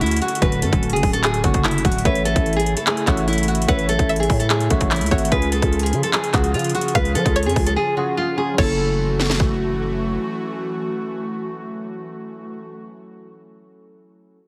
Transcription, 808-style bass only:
0, 0, Header, 1, 2, 480
1, 0, Start_track
1, 0, Key_signature, 3, "minor"
1, 0, Tempo, 408163
1, 494, Time_signature, 4, 2, 24, 8
1, 17026, End_track
2, 0, Start_track
2, 0, Title_t, "808-style bass"
2, 0, Program_c, 0, 38
2, 14, Note_on_c, 0, 38, 100
2, 242, Note_off_c, 0, 38, 0
2, 494, Note_on_c, 0, 26, 107
2, 734, Note_on_c, 0, 42, 99
2, 751, Note_off_c, 0, 26, 0
2, 848, Note_off_c, 0, 42, 0
2, 854, Note_on_c, 0, 26, 108
2, 1094, Note_on_c, 0, 30, 99
2, 1111, Note_off_c, 0, 26, 0
2, 1208, Note_off_c, 0, 30, 0
2, 1214, Note_on_c, 0, 26, 108
2, 1675, Note_off_c, 0, 26, 0
2, 1694, Note_on_c, 0, 30, 103
2, 2155, Note_off_c, 0, 30, 0
2, 2173, Note_on_c, 0, 26, 108
2, 2404, Note_off_c, 0, 26, 0
2, 2414, Note_on_c, 0, 33, 110
2, 2759, Note_off_c, 0, 33, 0
2, 2774, Note_on_c, 0, 33, 103
2, 3235, Note_off_c, 0, 33, 0
2, 3614, Note_on_c, 0, 33, 105
2, 4305, Note_off_c, 0, 33, 0
2, 4334, Note_on_c, 0, 33, 107
2, 4679, Note_off_c, 0, 33, 0
2, 4694, Note_on_c, 0, 33, 106
2, 5039, Note_off_c, 0, 33, 0
2, 5054, Note_on_c, 0, 45, 104
2, 5514, Note_off_c, 0, 45, 0
2, 5534, Note_on_c, 0, 33, 102
2, 5893, Note_on_c, 0, 37, 104
2, 5911, Note_off_c, 0, 33, 0
2, 6007, Note_off_c, 0, 37, 0
2, 6013, Note_on_c, 0, 32, 107
2, 6244, Note_off_c, 0, 32, 0
2, 6254, Note_on_c, 0, 37, 107
2, 6599, Note_off_c, 0, 37, 0
2, 6614, Note_on_c, 0, 37, 114
2, 6973, Note_on_c, 0, 49, 104
2, 6991, Note_off_c, 0, 37, 0
2, 7088, Note_off_c, 0, 49, 0
2, 7454, Note_on_c, 0, 37, 109
2, 7694, Note_on_c, 0, 49, 100
2, 7711, Note_off_c, 0, 37, 0
2, 7922, Note_off_c, 0, 49, 0
2, 8174, Note_on_c, 0, 37, 105
2, 8413, Note_on_c, 0, 53, 101
2, 8431, Note_off_c, 0, 37, 0
2, 8527, Note_off_c, 0, 53, 0
2, 8534, Note_on_c, 0, 37, 107
2, 8774, Note_on_c, 0, 41, 98
2, 8791, Note_off_c, 0, 37, 0
2, 8888, Note_off_c, 0, 41, 0
2, 8893, Note_on_c, 0, 37, 108
2, 9124, Note_off_c, 0, 37, 0
2, 10094, Note_on_c, 0, 30, 113
2, 11967, Note_off_c, 0, 30, 0
2, 17026, End_track
0, 0, End_of_file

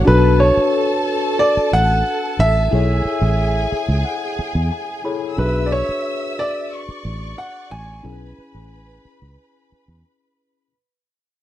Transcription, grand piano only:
0, 0, Header, 1, 2, 480
1, 0, Start_track
1, 0, Tempo, 665188
1, 48, Time_signature, 4, 2, 24, 8
1, 8241, End_track
2, 0, Start_track
2, 0, Title_t, "Grand piano"
2, 0, Program_c, 0, 0
2, 54, Note_on_c, 0, 71, 92
2, 274, Note_off_c, 0, 71, 0
2, 288, Note_on_c, 0, 73, 80
2, 1005, Note_on_c, 0, 74, 98
2, 1027, Note_off_c, 0, 73, 0
2, 1251, Note_on_c, 0, 78, 118
2, 1252, Note_off_c, 0, 74, 0
2, 1731, Note_on_c, 0, 76, 115
2, 1741, Note_off_c, 0, 78, 0
2, 2657, Note_off_c, 0, 76, 0
2, 3886, Note_on_c, 0, 71, 80
2, 4079, Note_off_c, 0, 71, 0
2, 4084, Note_on_c, 0, 74, 68
2, 4129, Note_off_c, 0, 74, 0
2, 4129, Note_on_c, 0, 73, 95
2, 4577, Note_off_c, 0, 73, 0
2, 4611, Note_on_c, 0, 74, 104
2, 5059, Note_off_c, 0, 74, 0
2, 5327, Note_on_c, 0, 78, 95
2, 5566, Note_on_c, 0, 80, 106
2, 5573, Note_off_c, 0, 78, 0
2, 7219, Note_off_c, 0, 80, 0
2, 8241, End_track
0, 0, End_of_file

